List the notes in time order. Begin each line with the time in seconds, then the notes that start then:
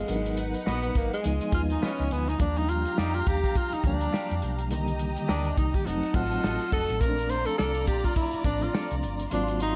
Already playing: F3 G#3 F4
0.07 G#1 F#3 B3 D4 D#4 A#4 B4 F#5, closed hi-hat
0.16 D#4
0.26 closed hi-hat
0.37 closed hi-hat
0.54 closed hi-hat
0.66 A#1 B3 F#4 B4 D#5, snare
0.82 closed hi-hat
0.95 G#1 A#3, kick, closed hi-hat
1.13 G#3, closed hi-hat
1.24 C#2 F3 G#3 B3 D#4 F4 D#5 G#5, closed hi-hat
1.41 closed hi-hat
1.52 D#2 F3 G#3 B3 F4, kick, closed hi-hat
1.70 D#4, closed hi-hat
1.82 C#4 F4 B4 D#5, snare
1.99 C#2, closed hi-hat
2.11 D2 B3, closed hi-hat
2.28 D#4, snare, closed hi-hat
2.39 D#2 F3 G3 A#3 D4 G4 F5 A#5, kick, closed hi-hat
2.56 D#4, closed hi-hat
2.68 F4, closed hi-hat
2.85 closed hi-hat
2.98 F2 D#4 F4 G4 D5, snare
3.14 F4, closed hi-hat
3.27 D#2 G4, kick, closed hi-hat
3.44 kick, closed hi-hat
3.55 F4, kick, closed hi-hat
3.73 D#4, muted fingered electric bass stroke, closed hi-hat
3.84 D2 F3 G3 A#3 D4, kick, closed hi-hat
4.01 closed hi-hat
4.12 F4 G4 D5, snare
4.30 F2, closed hi-hat
4.42 B1, closed hi-hat
4.59 closed hi-hat
4.70 C2 D3 D#3 G3 A#3 G4 D#5 A#5, closed hi-hat
4.88 closed hi-hat
4.99 closed hi-hat
5.16 closed hi-hat
5.28 D2 D4 G4 A#4 D#5, snare
5.45 closed hi-hat
5.57 C2 D#4, kick, closed hi-hat
5.74 G4, kick, closed hi-hat
5.85 F1 F#3 A3 C4 D#4 D#5 F#5 A5, closed hi-hat
6.03 muted fingered electric bass stroke, closed hi-hat
6.14 A1 F#3 A3 C4 F4 F#5, kick, closed hi-hat
6.31 closed hi-hat
6.43 A1 F#4 A4 D#5, snare
6.60 closed hi-hat
6.72 F1 F#4 A4 D#5, kick, open hi-hat
6.89 A1, closed hi-hat
7.00 A#1 F3 A3 C4 C#4 F4 A#4 D5 A#5, kick, closed hi-hat, tambourine
7.09 D4
7.18 closed hi-hat
7.29 C5, closed hi-hat, tambourine
7.46 A4, closed hi-hat
7.58 C2 F4 A4 D5, snare, tambourine
7.74 closed hi-hat
7.87 A#1 G4, kick, closed hi-hat, tambourine
8.04 F4, kick, closed hi-hat, tambourine
8.16 E4, kick, closed hi-hat, tambourine
8.33 muted fingered electric bass stroke, closed hi-hat
8.44 A1 F3 A3 C4 D4, kick, closed hi-hat, tambourine
8.61 F4, closed hi-hat
8.73 F4 A4 D5, snare, tambourine
8.91 C2, closed hi-hat
9.03 G1, closed hi-hat, tambourine
9.19 closed hi-hat
9.31 G#1 F#3 A#3 C4 D4 F4 F#4 F5 C6, closed hi-hat, tambourine
9.48 closed hi-hat
9.60 D#4, closed hi-hat, tambourine